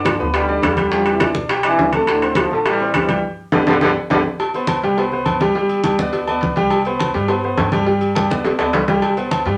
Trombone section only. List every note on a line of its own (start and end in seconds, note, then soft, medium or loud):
0.06 0.19 D3 medium
0.06 0.18 F3 medium
0.20 0.27 D3 medium
0.20 0.26 F3 medium
0.35 0.62 D3 medium
0.35 0.61 G3 loud
0.65 0.91 D3 medium
0.65 0.91 G3 loud
0.93 1.07 D3 medium
0.93 1.07 F3 medium
1.07 1.34 C3 medium
1.07 1.34 E3 medium
1.66 1.92 C3 medium
1.66 1.93 E3 loud
1.95 2.08 A2 medium
1.95 2.09 C3 medium
2.09 2.36 A2 medium
2.09 2.36 D3 medium
2.37 2.51 D3 medium
2.37 2.51 F3 loud
2.52 2.59 D3 medium
2.52 2.59 F3 loud
2.67 2.93 E3 medium
2.67 2.93 G3 loud
2.96 3.22 E3 medium
2.96 3.22 G3 loud
3.52 3.60 D3 loud
3.52 3.59 F3 medium
3.52 3.59 G3 medium
3.67 3.74 D3 loud
3.67 3.74 F3 loud
3.67 3.74 G3 medium
3.82 3.89 D3 loud
3.82 3.89 F3 loud
3.82 3.89 G3 medium
4.11 4.18 D3 medium
4.11 4.18 F3 loud
4.11 4.18 G3 loud